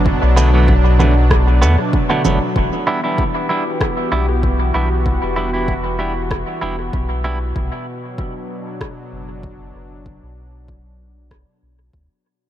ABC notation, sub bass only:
X:1
M:4/4
L:1/16
Q:"Swing 16ths" 1/4=96
K:Em
V:1 name="Sub bass" clef=bass
F,,, B,,,8- B,,, E,, z3 F,,, z | E,,, z8 z B,,,4 B,,,2- | B,,, E,,,8 z E,,,2 B,,,4 | B,,, z8 z F,,,4 F,,,2- |
F,,, B,,,8 z B,,,2 D,, z3 |]